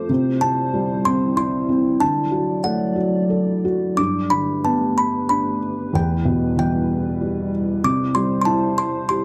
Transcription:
Already playing: felt piano F3 C4 A4 C5, ambient pad C5
0.09 felt piano C3, ambient pad G3 E4
0.41 felt piano C4, music box A5
0.74 felt piano G3
1.05 felt piano C4, music box C6
1.37 felt piano E4, music box C6
1.69 felt piano C4
2.00 felt piano D3, ambient pad F#3 D5, music box A5
2.31 felt piano F#4
2.64 felt piano A3, music box F#5
2.96 felt piano F#4
3.30 felt piano A4
3.65 felt piano F#4
3.97 felt piano G2, ambient pad A3 G4 B4, music box D6
4.30 felt piano D3, music box B5
4.65 felt piano B3, music box A5
4.98 music box B5
5.29 felt piano D4, music box B5
5.93 felt piano E2, ambient pad G3 E4, music box G5
6.25 felt piano B2
6.57 felt piano E3, music box G5
7.21 felt piano G3
7.84 felt piano C3, ambient pad C5, music box D6
8.15 felt piano G3, music box C6
8.42 music box A5 C6
8.46 felt piano E4
8.78 music box C6
9.09 felt piano G4, music box C6

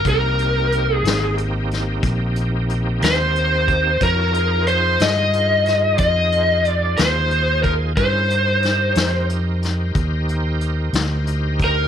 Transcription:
0.05 fingered electric bass C2, tonewheel organ A#3 C4 D#4 G4, kick, closed hi-hat
0.09 lead electric guitar A#4
0.39 closed hi-hat
0.72 closed hi-hat
0.94 lead electric guitar G#4
1.03 fingered electric bass G#1, closed hi-hat
1.07 snare
1.38 closed hi-hat
1.71 snare, closed hi-hat
2.03 fingered electric bass A#1, kick, closed hi-hat
2.36 closed hi-hat
2.69 closed hi-hat
3.02 fingered electric bass D#2, lead electric guitar C5, snare, closed hi-hat
3.35 closed hi-hat
3.68 kick, closed hi-hat
4.00 fingered electric bass F2, tonewheel organ E4 F#4 C#5 A5, lead electric guitar A#4, kick, closed hi-hat
4.33 tonewheel organ D#4 F4 G#4 C5, closed hi-hat
4.67 lead electric guitar C5, closed hi-hat
4.99 fingered electric bass G2, lead electric guitar D#5, snare, closed hi-hat
5.33 closed hi-hat
5.66 snare, closed hi-hat
5.98 fingered electric bass F2, lead electric guitar D#5, kick, closed hi-hat
6.32 closed hi-hat
6.65 lead electric guitar D5, closed hi-hat
6.97 fingered electric bass D#2, lead electric guitar C5, snare, closed hi-hat
7.31 closed hi-hat
7.63 lead electric guitar A#4, kick, closed hi-hat
7.96 fingered electric bass G2, tonewheel organ C#4 E4 G#4 A#4, lead electric guitar C5, kick, closed hi-hat
8.30 tonewheel organ D#4 G4 A#4 C5, closed hi-hat
8.62 snare, closed hi-hat
8.95 fingered electric bass F2, snare, closed hi-hat
9.29 closed hi-hat
9.62 snare, closed hi-hat
9.95 fingered electric bass D#2, kick, closed hi-hat
10.29 closed hi-hat
10.61 closed hi-hat
10.93 fingered electric bass D2, snare, closed hi-hat
11.27 closed hi-hat
11.60 kick, closed hi-hat
11.64 lead electric guitar A#4

